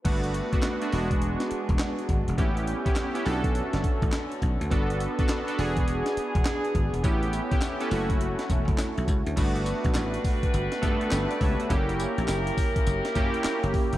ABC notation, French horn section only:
X:1
M:4/4
L:1/8
Q:"Swing 16ths" 1/4=103
K:Glyd
V:1 name="French horn section"
[G,DFB]3 [E,B,^G]4- [E,B,G] | [G,A,C]3 [D,B,]4- [D,B,] | [G,FB]3 [E,B,D^G]4- [E,B,DG] | [A,CG]3 [F,EA]4- [F,EA] |
[G,DFB]8 | [F,EG^A]8 |]